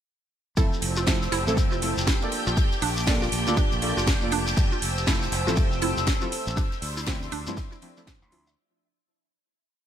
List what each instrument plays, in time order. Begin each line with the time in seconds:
0.57 fingered electric bass F1, synth stab F3 A3 C4 E4 A4, synth arpeggio sound E4, string machine G4 G5, ambient pad C5 A5 E6, kick, ride, shekere
0.73 shekere
0.82 fingered electric bass F1, open hi-hat, ride
0.96 synth arpeggio sound F4, shekere
1.07 synth stab F3 A3 C4 E4 A4, kick, snare, ride, shekere
1.22 snare, shekere
1.32 fingered electric bass F1, synth arpeggio sound E4, snare, open hi-hat, ride
1.47 fingered electric bass A1, synth stab F3 A3 C4 E4 A4, snare, shekere
1.57 fingered electric bass F1, kick, ride, shekere
1.72 synth arpeggio sound F4, shekere
1.82 synth stab F3 A3 C4 E4 A4, open hi-hat, ride
1.97 fingered electric bass F1, snare, shekere
2.07 synth arpeggio sound E4, kick, snare, ride, shekere
2.22 synth stab A#3 D4 F4 A4 D5, ride, shekere
2.32 ambient pad A#3 D6, open hi-hat, ride
2.47 fingered electric bass A#1, synth arpeggio sound F4, shekere
2.57 kick, ride, shekere
2.72 ride, shekere
2.82 fingered electric bass A#1, synth arpeggio sound D4, open hi-hat
2.97 shekere
3.07 synth stab A#3 D4 F4 A4 D5, kick, snare, ride, shekere
3.22 synth arpeggio sound F4, snare, shekere
3.32 fingered electric bass A#1, open hi-hat, ride
3.47 fingered electric bass D2, synth stab A#3 D4 F4 A4 D5, ride, shekere
3.57 synth arpeggio sound D4, kick, ride, shekere
3.72 fingered electric bass A#1, ride, shekere
3.82 synth stab A#3 D4 F4 A4 D5, open hi-hat, ride
3.97 fingered electric bass F1, synth arpeggio sound F4, snare, shekere
4.07 kick, snare, ride, shekere
4.22 synth stab A#3 D4 F4 A4 D5, shekere
4.31 synth arpeggio sound D4, open hi-hat, ride
4.47 snare, shekere
4.57 fingered electric bass F1, ambient pad C5 E6, kick, ride, shekere
4.72 synth arpeggio sound F4, shekere
4.82 fingered electric bass F1, open hi-hat, ride
4.98 shekere
5.07 synth stab F3 A3 C4 E4 A4, synth arpeggio sound E4, kick, snare, ride, shekere
5.22 snare, shekere
5.32 fingered electric bass F1, snare, open hi-hat, ride
5.47 fingered electric bass A1, synth stab F3 A3 C4 E4 A4, synth arpeggio sound F4, snare, shekere
5.56 fingered electric bass F1, kick, ride, shekere
5.72 shekere
5.82 synth stab F3 A3 C4 E4 A4, synth arpeggio sound E4, open hi-hat, ride
5.96 fingered electric bass F1, snare, shekere
6.07 kick, snare, ride, shekere
6.21 synth stab F3 A3 C4 E4 A4, synth arpeggio sound F4, ride, shekere
6.32 open hi-hat, ride
6.47 fingered electric bass A1, shekere
6.57 synth arpeggio sound D4, ambient pad D5 C6, kick, ride, shekere
6.72 ride, shekere
6.82 fingered electric bass D2, open hi-hat
6.97 synth arpeggio sound E4, shekere
7.06 synth stab F3 A3 C4 D4 E4, kick, snare, ride, shekere
7.22 snare, shekere
7.32 fingered electric bass D2, synth arpeggio sound D4, open hi-hat, ride
7.47 fingered electric bass G2, synth stab F3 A3 C4 D4 E4, ride, shekere
7.57 kick, snare, ride, shekere
7.72 synth arpeggio sound E4, ride, shekere
7.82 synth stab F3 A3 C4 D4 E4, open hi-hat, ride
7.96 synth stab F3 A3 C4 D4 E4, snare, shekere
8.07 fingered electric bass A1, synth arpeggio sound D4, kick, snare, ride, shekere
8.22 fingered electric bass D2, shekere
8.32 synth stab F3 A3 C4 D4 E4, synth arpeggio sound F4, open hi-hat, ride
8.47 synth arpeggio sound E5, snare, shekere